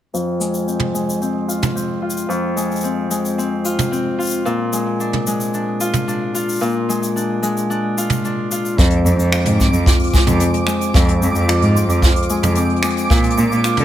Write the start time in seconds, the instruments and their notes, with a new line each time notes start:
0.13 harp F2, shaker
0.40 harp G#3, shaker
0.54 shaker
0.67 harp C4, shaker
0.80 mid tom
0.94 harp G#3, shaker
1.09 shaker
1.21 harp C4, shaker
1.48 harp F4, shaker
1.63 mid tom, shaker
1.75 harp C4, shaker
2.02 harp F4
2.10 shaker
2.17 shaker
2.29 harp F2, shaker
2.56 harp G#3, shaker
2.71 shaker
2.76 shaker
2.81 harp C4, shaker
2.84 shaker
3.10 harp G#3, shaker
3.25 shaker
3.38 harp C4, shaker
3.65 harp F4, shaker
3.79 mid tom, shaker
3.91 harp C4, shaker
4.18 harp F4, shaker
4.22 shaker
4.24 shaker
4.27 shaker
4.29 shaker
4.31 shaker
4.34 shaker
4.45 harp A#2, shaker
4.73 harp G#3, shaker
5.00 harp D4, shaker
5.13 mid tom
5.27 harp G#3, shaker
5.40 shaker
5.54 harp D4, shaker
5.80 harp F4, shaker
5.93 mid tom, shaker
6.08 harp D4, shaker
6.34 harp F4, shaker
6.49 shaker
6.52 shaker
6.55 shaker
6.59 harp A#2, shaker
6.62 shaker
6.66 shaker
6.72 shaker
6.89 harp G#3, shaker
7.03 shaker
7.16 harp D4, shaker
7.42 harp G#3, shaker
7.57 shaker
7.70 harp D4, shaker
7.98 harp F4, shaker
8.10 mid tom, shaker
8.25 harp D4, shaker
8.51 harp F4, shaker
8.65 shaker
8.77 cello F2, harp F2, synth texture D6, kick, closed hi-hat, shaker
8.90 closed hi-hat
9.05 cello F2, harp C4, shaker
9.18 cello F2, shaker
9.32 harp F4, finger snap, shaker
9.45 cello G#2, closed hi-hat, mid tom
9.58 harp C4, kick, shaker
9.73 cello F2, closed hi-hat, shaker
9.86 harp F4, kick, closed hi-hat, shaker
10.00 closed hi-hat
10.03 closed hi-hat
10.07 closed hi-hat
10.13 harp G#3, kick, closed hi-hat, shaker
10.27 cello F2, mid tom, shaker
10.40 harp C4, closed hi-hat, shaker
10.54 closed hi-hat
10.67 harp G#3, finger snap, shaker
10.81 closed hi-hat, shaker
10.94 cello F2, harp F2, kick, closed hi-hat, shaker
11.09 closed hi-hat
11.21 cello F2, harp C4, shaker
11.35 cello F2, shaker
11.47 harp F4, finger snap, closed hi-hat, shaker
11.62 cello G#2, closed hi-hat
11.75 harp C4, shaker
11.88 cello F2, closed hi-hat, shaker
12.02 harp F4, kick, closed hi-hat, shaker
12.16 closed hi-hat
12.22 closed hi-hat
12.29 harp G#3, closed hi-hat, shaker
12.36 closed hi-hat
12.43 cello F2, mid tom, shaker
12.55 harp C4, closed hi-hat, shaker
12.70 closed hi-hat
12.76 closed hi-hat
12.83 harp G#3, finger snap, closed hi-hat, shaker
12.90 closed hi-hat
12.97 closed hi-hat, shaker
13.10 cello A#2, harp A#2, kick, closed hi-hat, shaker
13.17 closed hi-hat
13.24 closed hi-hat
13.30 closed hi-hat
13.37 cello A#2, harp D4, shaker
13.52 cello A#2, shaker
13.64 harp F4, finger snap, closed hi-hat, shaker
13.77 cello D3, closed hi-hat, mid tom